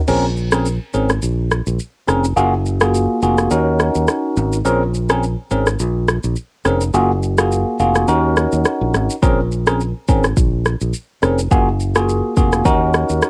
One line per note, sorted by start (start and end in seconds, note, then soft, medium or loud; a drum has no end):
0.08 0.78 A#1 loud
0.08 0.25 C4 medium
0.08 0.25 C#4 medium
0.08 0.25 G#4 medium
0.08 0.25 A#4 loud
0.08 crash medium
0.08 shaker medium
0.37 shaker soft
0.52 0.66 C4 medium
0.52 0.66 C#4 medium
0.52 0.66 G#4 medium
0.52 0.67 A#4 medium
0.52 cross-stick loud
0.52 shaker medium
0.66 shaker medium
0.94 1.18 G#1 medium
0.94 1.10 C4 medium
0.94 1.10 C#4 medium
0.94 1.11 G#4 medium
0.94 1.11 A#4 medium
0.94 shaker medium
1.09 cross-stick medium
1.09 shaker medium
1.22 1.60 A#1 loud
1.22 shaker medium
1.51 cross-stick loud
1.51 shaker medium
1.67 1.78 A#1 medium
1.67 shaker medium
1.79 shaker medium
2.08 2.32 F1 medium
2.08 2.25 C4 medium
2.08 2.25 C#4 medium
2.08 2.25 G#4 medium
2.08 2.25 A#4 medium
2.08 cross-stick medium
2.08 shaker medium
2.24 shaker medium
2.36 3.06 F#1 loud
2.36 2.53 A#3 loud
2.36 2.53 F4 medium
2.36 2.53 F#4 medium
2.36 2.53 G#4 loud
2.36 shaker medium
2.66 shaker soft
2.81 3.19 A#3 medium
2.81 3.19 F4 medium
2.81 3.19 F#4 medium
2.81 3.20 G#4 medium
2.81 cross-stick loud
2.81 shaker medium
2.95 shaker medium
3.22 3.47 F1 medium
3.22 3.49 A#3 medium
3.22 3.49 F4 medium
3.22 3.49 F#4 medium
3.22 3.49 G#4 medium
3.22 shaker medium
3.38 cross-stick medium
3.38 shaker medium
3.51 3.88 D#2 loud
3.51 4.57 C#4 medium
3.51 4.57 D#4 medium
3.51 4.57 F#4 medium
3.51 4.57 A#4 loud
3.51 shaker medium
3.79 cross-stick loud
3.79 shaker medium
3.95 4.06 D#2 medium
3.95 shaker medium
4.08 cross-stick loud
4.08 shaker medium
4.37 4.61 G#1 loud
4.37 shaker medium
4.53 shaker medium
4.65 5.35 A#1 loud
4.65 4.82 C4 loud
4.65 4.82 C#4 medium
4.65 4.82 G#4 medium
4.65 4.82 A#4 loud
4.65 shaker medium
4.94 shaker soft
5.09 5.23 C4 medium
5.09 5.23 C#4 medium
5.09 5.24 G#4 medium
5.09 5.24 A#4 medium
5.09 cross-stick loud
5.09 shaker medium
5.23 shaker medium
5.51 5.75 G#1 loud
5.51 5.67 C4 medium
5.51 5.68 C#4 medium
5.51 5.68 G#4 medium
5.51 5.68 A#4 medium
5.51 shaker medium
5.66 cross-stick medium
5.66 shaker medium
5.79 6.17 A#1 medium
5.79 shaker medium
6.08 cross-stick loud
6.08 shaker medium
6.24 6.35 A#1 medium
6.24 shaker medium
6.36 shaker medium
6.65 6.90 F1 medium
6.65 6.82 C4 medium
6.65 6.82 C#4 medium
6.65 6.82 G#4 medium
6.65 6.82 A#4 medium
6.65 cross-stick medium
6.65 shaker medium
6.81 shaker medium
6.94 7.63 F#1 loud
6.94 7.10 A#3 medium
6.94 7.10 F4 medium
6.94 7.11 F#4 medium
6.94 7.11 G#4 loud
6.94 shaker medium
7.23 shaker soft
7.38 7.76 A#3 medium
7.38 7.77 F4 medium
7.38 7.77 F#4 medium
7.38 7.77 G#4 medium
7.38 cross-stick loud
7.38 shaker medium
7.52 shaker medium
7.79 8.04 F1 medium
7.79 8.06 A#3 medium
7.79 8.06 F4 medium
7.79 8.06 F#4 medium
7.79 8.06 G#4 medium
7.79 shaker medium
7.95 cross-stick medium
7.95 shaker medium
8.08 8.45 D#2 loud
8.08 9.14 C#4 medium
8.08 9.14 D#4 medium
8.08 9.14 F#4 medium
8.08 9.14 A#4 loud
8.08 shaker medium
8.37 cross-stick loud
8.37 shaker medium
8.52 8.63 D#2 medium
8.52 shaker medium
8.65 cross-stick loud
8.65 shaker medium
8.81 8.92 A#1 medium
8.94 9.07 G#1 medium
8.94 cross-stick medium
8.94 shaker medium
9.10 shaker medium
9.22 9.92 A#1 loud
9.22 9.39 C4 medium
9.22 9.39 C#4 medium
9.22 9.39 G#4 medium
9.22 9.39 A#4 loud
9.22 kick loud
9.22 shaker medium
9.51 shaker soft
9.66 9.80 C4 medium
9.66 9.81 C#4 medium
9.66 9.81 G#4 medium
9.66 9.81 A#4 medium
9.66 cross-stick loud
9.66 shaker medium
9.80 shaker medium
10.08 10.32 G#1 medium
10.08 10.25 C4 medium
10.08 10.25 C#4 medium
10.08 10.25 G#4 medium
10.08 10.25 A#4 medium
10.08 kick medium
10.08 shaker medium
10.24 cross-stick medium
10.24 shaker medium
10.37 10.74 A#1 loud
10.37 kick medium
10.37 shaker medium
10.65 cross-stick medium
10.65 shaker medium
10.81 10.92 A#1 medium
10.81 shaker medium
10.94 shaker medium
11.22 11.47 F1 medium
11.22 11.39 C4 medium
11.22 11.39 C#4 medium
11.22 11.39 G#4 medium
11.22 11.39 A#4 medium
11.22 cross-stick medium
11.22 shaker medium
11.38 shaker medium
11.51 12.20 F#1 loud
11.51 11.68 A#3 medium
11.51 11.68 F4 medium
11.51 11.68 F#4 medium
11.51 11.68 G#4 loud
11.51 kick loud
11.51 shaker medium
11.80 shaker medium
11.95 12.34 A#3 medium
11.95 12.34 F4 medium
11.95 12.34 F#4 medium
11.95 12.34 G#4 medium
11.95 cross-stick loud
11.95 shaker medium
12.09 shaker medium
12.37 12.61 F1 medium
12.37 12.63 A#3 medium
12.37 12.63 F4 medium
12.37 12.63 F#4 medium
12.37 12.64 G#4 medium
12.37 kick medium
12.37 shaker medium
12.52 cross-stick medium
12.52 shaker medium
12.65 13.03 D#2 loud
12.65 13.30 C#4 medium
12.65 13.30 D#4 medium
12.65 13.30 F#4 medium
12.65 13.30 A#4 loud
12.65 kick medium
12.65 shaker medium
12.94 cross-stick loud
12.94 shaker medium
13.09 13.20 D#2 medium
13.09 shaker medium
13.22 cross-stick loud
13.22 shaker medium